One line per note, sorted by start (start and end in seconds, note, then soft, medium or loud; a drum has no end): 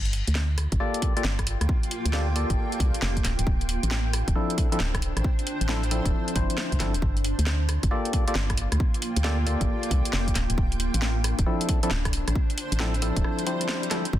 0.00 0.23 G1 loud
0.00 4.31 F4 medium
0.05 closed hi-hat soft
0.13 open hi-hat loud
0.22 3.24 A#3 medium
0.27 0.67 D2 loud
0.27 closed hi-hat medium
0.35 snare loud
0.48 4.77 G5 medium
0.58 cross-stick medium
0.58 open hi-hat loud
0.72 0.78 G1 medium
0.72 kick loud
0.72 closed hi-hat medium
0.80 1.13 A#3 medium
0.80 1.13 F4 medium
0.80 1.13 G4 medium
0.80 1.13 A4 medium
0.80 1.13 D5 medium
0.94 closed hi-hat medium
1.02 kick loud
1.02 open hi-hat loud
1.17 1.24 A#3 loud
1.17 1.24 F4 medium
1.17 1.24 G4 medium
1.17 1.24 A4 medium
1.17 1.24 D5 loud
1.17 closed hi-hat medium
1.24 1.56 G1 medium
1.24 snare loud
1.39 kick medium
1.39 cross-stick medium
1.39 closed hi-hat soft
1.47 open hi-hat loud
1.61 1.67 D2 medium
1.61 cross-stick medium
1.61 closed hi-hat medium
1.69 kick loud
1.83 closed hi-hat soft
1.91 open hi-hat loud
2.05 2.45 D2 loud
2.05 closed hi-hat medium
2.13 2.27 A#3 medium
2.13 2.27 F4 medium
2.13 2.27 G4 medium
2.13 2.27 A4 medium
2.13 2.27 D5 medium
2.13 snare loud
2.36 3.24 A#3 medium
2.36 3.24 F4 medium
2.36 3.24 G4 medium
2.36 3.24 A4 medium
2.36 3.24 D5 medium
2.36 open hi-hat loud
2.50 2.56 G1 medium
2.50 kick loud
2.50 closed hi-hat medium
2.72 closed hi-hat soft
2.80 2.91 C2 medium
2.80 kick loud
2.80 open hi-hat loud
2.94 closed hi-hat medium
3.02 3.21 F1 medium
3.02 snare loud
3.17 kick medium
3.17 closed hi-hat soft
3.24 3.36 D1 loud
3.24 8.34 D4 medium
3.24 snare medium
3.24 open hi-hat loud
3.39 3.45 D1 loud
3.39 closed hi-hat medium
3.47 3.79 D1 loud
3.47 kick loud
3.54 7.67 C5 medium
3.61 closed hi-hat soft
3.69 open hi-hat loud
3.83 4.23 A1 loud
3.83 closed hi-hat medium
3.91 snare loud
4.13 cross-stick medium
4.13 open hi-hat loud
4.28 4.34 D1 medium
4.28 kick loud
4.28 closed hi-hat medium
4.35 4.69 F3 medium
4.35 4.69 C4 medium
4.35 4.69 D4 medium
4.35 4.69 E4 medium
4.35 4.69 A4 medium
4.50 closed hi-hat soft
4.58 kick loud
4.58 open hi-hat loud
4.72 4.80 F3 loud
4.72 4.80 C4 medium
4.72 4.80 D4 medium
4.72 4.80 E4 medium
4.72 4.80 A4 loud
4.72 closed hi-hat medium
4.80 5.12 D1 medium
4.80 snare loud
4.94 kick medium
4.94 cross-stick medium
4.94 closed hi-hat soft
5.02 open hi-hat loud
5.17 5.23 A1 medium
5.17 cross-stick medium
5.17 closed hi-hat medium
5.24 kick loud
5.39 closed hi-hat soft
5.47 open hi-hat medium
5.61 6.01 A1 loud
5.61 closed hi-hat medium
5.69 5.83 F3 medium
5.69 5.83 C4 medium
5.69 5.83 D4 medium
5.69 5.83 E4 medium
5.69 5.83 A4 medium
5.69 snare loud
5.83 closed hi-hat soft
5.91 6.34 F3 medium
5.91 6.34 C4 medium
5.91 6.34 D4 medium
5.91 6.34 E4 medium
5.91 6.34 A4 medium
5.91 open hi-hat loud
6.05 6.12 D1 medium
6.05 kick loud
6.05 closed hi-hat medium
6.28 closed hi-hat medium
6.36 6.47 G1 medium
6.36 6.78 F3 medium
6.36 6.78 C4 medium
6.36 6.78 D4 medium
6.36 6.78 E4 medium
6.36 6.78 C5 medium
6.36 kick loud
6.36 open hi-hat loud
6.50 closed hi-hat medium
6.58 snare loud
6.72 6.78 C2 medium
6.72 kick medium
6.72 closed hi-hat soft
6.80 6.96 G1 medium
6.80 6.94 F3 medium
6.80 6.94 C4 medium
6.80 6.94 D4 medium
6.80 6.94 E4 medium
6.80 6.94 A4 medium
6.80 snare medium
6.80 open hi-hat loud
6.94 7.01 D1 medium
6.94 closed hi-hat medium
7.02 7.34 G1 loud
7.02 11.60 F4 medium
7.02 kick loud
7.17 closed hi-hat soft
7.22 10.36 A#3 medium
7.22 open hi-hat loud
7.39 7.78 D2 loud
7.39 closed hi-hat medium
7.47 snare loud
7.69 cross-stick soft
7.69 open hi-hat loud
7.83 7.89 G1 medium
7.83 kick loud
7.83 closed hi-hat medium
7.90 8.24 A#3 medium
7.90 8.24 F4 medium
7.90 8.24 G4 medium
7.90 8.24 A4 medium
7.90 8.24 D5 medium
7.90 11.19 G5 medium
8.05 closed hi-hat soft
8.13 kick loud
8.13 open hi-hat loud
8.28 8.35 A#3 loud
8.28 8.35 F4 medium
8.28 8.35 G4 medium
8.28 8.35 A4 medium
8.28 8.35 D5 loud
8.28 closed hi-hat medium
8.35 8.67 G1 medium
8.35 snare loud
8.50 kick medium
8.50 cross-stick medium
8.50 closed hi-hat medium
8.57 open hi-hat loud
8.72 8.78 D2 medium
8.72 cross-stick medium
8.72 closed hi-hat medium
8.80 kick loud
8.94 closed hi-hat soft
9.02 open hi-hat loud
9.16 9.56 D2 loud
9.16 closed hi-hat medium
9.24 9.38 A#3 medium
9.24 9.38 F4 medium
9.24 9.38 G4 medium
9.24 9.38 A4 medium
9.24 9.38 D5 medium
9.24 snare loud
9.46 10.35 A#3 medium
9.46 10.35 F4 medium
9.46 10.34 G4 medium
9.46 10.35 A4 medium
9.46 10.35 D5 medium
9.46 open hi-hat loud
9.61 9.67 G1 medium
9.61 kick loud
9.61 closed hi-hat medium
9.83 closed hi-hat medium
9.91 10.02 C2 medium
9.91 kick loud
9.91 open hi-hat loud
10.05 closed hi-hat medium
10.13 10.32 F1 medium
10.13 snare loud
10.28 kick medium
10.28 closed hi-hat medium
10.35 10.47 D1 loud
10.35 14.19 D4 medium
10.35 snare medium
10.35 open hi-hat loud
10.50 10.56 D1 loud
10.50 closed hi-hat medium
10.58 10.90 D1 loud
10.58 kick loud
10.72 closed hi-hat soft
10.80 open hi-hat loud
10.89 14.19 C5 medium
10.94 11.34 A1 loud
10.94 closed hi-hat medium
11.02 snare loud
11.24 cross-stick medium
11.24 open hi-hat loud
11.39 11.45 D1 medium
11.39 kick loud
11.39 closed hi-hat medium
11.46 11.80 F3 medium
11.46 11.80 C4 medium
11.46 11.80 D4 medium
11.46 11.80 E4 medium
11.46 11.80 A4 medium
11.61 closed hi-hat medium
11.69 kick loud
11.69 open hi-hat loud
11.83 11.91 F3 loud
11.83 11.91 C4 medium
11.83 11.91 D4 medium
11.83 11.91 E4 medium
11.83 11.91 A4 loud
11.83 closed hi-hat medium
11.91 12.23 D1 medium
11.91 snare loud
12.05 kick medium
12.05 cross-stick medium
12.05 closed hi-hat medium
12.13 open hi-hat loud
12.28 12.34 A1 medium
12.28 cross-stick medium
12.28 closed hi-hat medium
12.35 kick loud
12.50 closed hi-hat soft
12.58 open hi-hat loud
12.72 13.12 A1 loud
12.72 closed hi-hat medium
12.80 12.94 F3 medium
12.80 12.94 C4 medium
12.80 12.94 D4 medium
12.80 12.94 E4 medium
12.80 12.94 A4 medium
12.80 snare loud
12.94 closed hi-hat soft
13.02 13.45 F3 medium
13.02 13.45 C4 medium
13.02 13.45 D4 medium
13.02 13.45 E4 medium
13.02 13.45 A4 medium
13.02 open hi-hat loud
13.16 13.23 D1 medium
13.16 kick loud
13.16 closed hi-hat medium
13.24 cross-stick medium
13.24 swell medium
13.39 closed hi-hat medium
13.47 13.89 F3 medium
13.47 13.89 C4 medium
13.47 13.89 D4 medium
13.47 13.89 E4 medium
13.47 13.89 C5 medium
13.47 open hi-hat loud
13.61 closed hi-hat medium
13.69 snare loud
13.83 closed hi-hat medium
13.91 14.05 F3 medium
13.91 14.05 C4 medium
13.91 14.05 D4 medium
13.91 14.05 E4 medium
13.91 14.05 A4 medium
13.91 cross-stick medium
13.91 snare medium
13.91 open hi-hat loud
14.05 closed hi-hat medium
14.13 14.19 G1 loud
14.13 kick loud